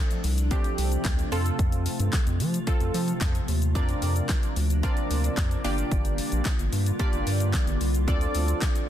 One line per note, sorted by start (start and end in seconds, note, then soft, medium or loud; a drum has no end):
0.00 5.61 C3 medium
0.00 0.21 F3 loud
0.00 1.30 F3 medium
0.00 0.22 A3 medium
0.00 3.71 A3 medium
0.00 0.22 C4 medium
0.00 0.22 D4 medium
0.00 1.30 D4 medium
0.00 0.22 A4 loud
0.11 closed hi-hat medium
0.11 shaker medium
0.24 0.52 C2 loud
0.24 open hi-hat medium
0.24 shaker medium
0.38 closed hi-hat medium
0.38 shaker medium
0.51 1.30 F3 medium
0.51 1.30 A3 medium
0.51 1.30 C4 medium
0.51 1.30 D4 medium
0.51 1.30 G4 loud
0.51 kick loud
0.51 closed hi-hat medium
0.51 shaker medium
0.64 closed hi-hat medium
0.64 shaker medium
0.78 0.97 C2 medium
0.78 open hi-hat medium
0.78 shaker medium
0.92 closed hi-hat medium
0.92 shaker medium
1.05 1.24 D2 medium
1.05 kick loud
1.05 snare loud
1.05 clap loud
1.05 clap medium
1.05 closed hi-hat medium
1.05 shaker medium
1.19 closed hi-hat medium
1.19 shaker medium
1.32 1.51 F2 loud
1.32 5.61 F3 medium
1.32 2.18 C4 medium
1.32 3.73 F4 loud
1.32 2.19 F4 medium
1.32 2.19 A4 loud
1.32 open hi-hat medium
1.32 shaker medium
1.46 closed hi-hat medium
1.46 shaker medium
1.59 1.88 F2 loud
1.59 kick loud
1.59 closed hi-hat medium
1.59 shaker medium
1.72 closed hi-hat medium
1.72 shaker medium
1.86 open hi-hat medium
1.86 shaker medium
2.00 2.09 G2 medium
2.00 closed hi-hat medium
2.00 shaker medium
2.13 kick loud
2.13 snare medium
2.13 clap loud
2.13 clap medium
2.13 closed hi-hat medium
2.13 shaker medium
2.27 2.42 F2 loud
2.27 closed hi-hat medium
2.27 shaker medium
2.40 2.59 F3 loud
2.40 open hi-hat medium
2.40 shaker medium
2.54 closed hi-hat medium
2.54 shaker medium
2.67 3.46 C4 medium
2.67 3.46 F4 medium
2.67 3.46 A4 loud
2.67 kick loud
2.67 closed hi-hat medium
2.67 shaker medium
2.80 2.90 F2 loud
2.80 closed hi-hat medium
2.80 shaker medium
2.94 3.13 F3 loud
2.94 open hi-hat medium
2.94 shaker medium
3.08 closed hi-hat medium
3.08 shaker medium
3.21 3.40 F2 loud
3.21 kick loud
3.21 snare loud
3.21 clap loud
3.21 clap medium
3.21 closed hi-hat medium
3.21 shaker medium
3.35 closed hi-hat medium
3.35 shaker medium
3.48 3.77 D#2 medium
3.48 open hi-hat medium
3.48 shaker medium
3.62 closed hi-hat medium
3.62 shaker medium
3.75 3.94 F2 loud
3.75 8.04 A#3 medium
3.75 4.54 C4 medium
3.75 4.54 D4 medium
3.75 5.63 D4 medium
3.75 4.54 F4 medium
3.75 4.54 A#4 medium
3.75 4.54 D5 loud
3.75 kick loud
3.75 closed hi-hat medium
3.75 shaker medium
3.89 closed hi-hat medium
3.89 shaker medium
4.02 4.21 F2 loud
4.02 open hi-hat medium
4.02 shaker medium
4.16 closed hi-hat medium
4.16 shaker medium
4.29 kick loud
4.29 snare medium
4.29 clap loud
4.29 clap medium
4.29 closed hi-hat medium
4.29 shaker medium
4.43 closed hi-hat medium
4.43 shaker medium
4.56 4.85 D2 loud
4.56 open hi-hat medium
4.56 shaker medium
4.70 closed hi-hat medium
4.70 shaker medium
4.83 5.62 C4 medium
4.83 5.62 D4 medium
4.83 5.62 F4 medium
4.83 5.62 A#4 medium
4.83 5.62 D5 loud
4.83 kick loud
4.83 closed hi-hat medium
4.83 shaker medium
4.97 closed hi-hat soft
4.97 shaker medium
5.10 5.29 D2 loud
5.10 open hi-hat medium
5.10 shaker medium
5.24 closed hi-hat medium
5.24 shaker medium
5.37 5.56 F2 loud
5.37 kick loud
5.37 snare loud
5.37 clap loud
5.37 clap medium
5.37 closed hi-hat medium
5.37 shaker medium
5.51 closed hi-hat medium
5.51 shaker medium
5.64 5.83 G1 loud
5.64 8.05 D3 medium
5.64 8.05 G3 medium
5.64 6.51 A#3 medium
5.64 6.51 D4 medium
5.64 8.89 F4 loud
5.64 6.51 F4 medium
5.64 6.51 G4 medium
5.64 6.51 D5 loud
5.64 open hi-hat medium
5.64 shaker medium
5.78 closed hi-hat medium
5.78 shaker medium
5.92 6.20 G1 loud
5.92 kick loud
5.92 closed hi-hat medium
5.92 shaker medium
6.05 closed hi-hat medium
6.05 shaker medium
6.18 open hi-hat medium
6.18 shaker medium
6.32 6.42 A#1 medium
6.32 closed hi-hat medium
6.32 shaker medium
6.45 kick loud
6.45 snare medium
6.45 clap loud
6.45 clap medium
6.45 closed hi-hat medium
6.45 shaker medium
6.59 6.69 G1 medium
6.59 closed hi-hat medium
6.59 shaker medium
6.73 6.92 G2 loud
6.73 open hi-hat medium
6.73 shaker medium
6.86 closed hi-hat medium
6.86 shaker medium
6.99 7.78 A#3 medium
6.99 7.78 D4 medium
6.99 7.78 F4 medium
6.99 7.78 G4 medium
6.99 7.78 D5 loud
6.99 kick loud
6.99 closed hi-hat medium
6.99 shaker medium
7.13 7.23 G1 loud
7.13 closed hi-hat medium
7.13 shaker medium
7.27 7.55 G2 loud
7.27 open hi-hat medium
7.27 shaker medium
7.40 closed hi-hat medium
7.40 shaker medium
7.54 kick loud
7.54 snare loud
7.54 clap loud
7.54 clap medium
7.54 closed hi-hat medium
7.54 shaker medium
7.67 7.77 G1 medium
7.67 closed hi-hat medium
7.67 shaker medium
7.81 8.09 C2 medium
7.81 open hi-hat medium
7.81 shaker medium
7.94 closed hi-hat medium
7.94 shaker medium
8.08 8.27 D2 loud
8.08 8.89 D3 medium
8.08 8.89 A3 medium
8.08 8.86 C4 medium
8.08 8.89 C4 medium
8.08 8.86 D4 medium
8.08 8.86 F4 medium
8.08 8.86 A4 medium
8.08 8.87 D5 loud
8.08 kick loud
8.08 closed hi-hat medium
8.08 shaker medium
8.21 closed hi-hat medium
8.21 shaker medium
8.35 8.54 D2 loud
8.35 open hi-hat medium
8.35 shaker medium
8.48 closed hi-hat medium
8.48 shaker medium
8.62 kick loud
8.62 snare medium
8.62 clap loud
8.62 clap medium
8.62 closed hi-hat medium
8.62 shaker medium
8.75 closed hi-hat medium
8.75 shaker medium